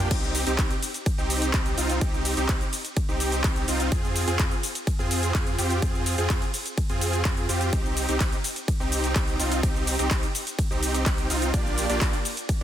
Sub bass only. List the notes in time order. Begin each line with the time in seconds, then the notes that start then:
0.11 C2
0.47 C2
0.59 C2
1.18 C2
1.54 C2
1.77 C2
2.01 C2
2.37 C2
2.49 C2
3.08 C2
3.44 C2
3.68 C2
3.92 F2
4.27 F2
4.39 F2
4.99 F2
5.35 F2
5.58 F2
5.82 F2
6.18 F2
6.30 F2
6.89 F2
7.25 F2
7.49 F2
7.73 C2
8.09 C2
8.20 C2
8.80 C2
9.16 C2
9.40 C2
9.63 C2
9.99 C2
10.11 C2
10.71 C2
11.06 C2
11.30 C2
11.54 A#1
11.90 A#1
12.01 A#1